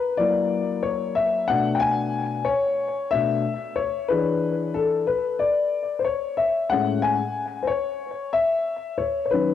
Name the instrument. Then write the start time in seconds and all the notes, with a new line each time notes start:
grand piano
Already playing: B4
0.17 F#3 A#3 E4 D5
0.83 C#5
1.15 E5
1.48 B2 A3 D4 F#5
1.75 G5
1.80 G#5
2.45 C#5
3.11 B2 A3 D4 E5
3.76 C#5
4.08 E3 D4 G#4 B4
4.74 A4
5.07 B4
5.39 D5
5.99 C5
6.05 C#5
6.37 E5
6.70 A2 G#3 C#4 F#5
7.02 G#5
7.63 C5
7.67 C#5
8.33 E5
8.98 C#5
9.26 C#5
9.31 D#3 F#3 C#4 B4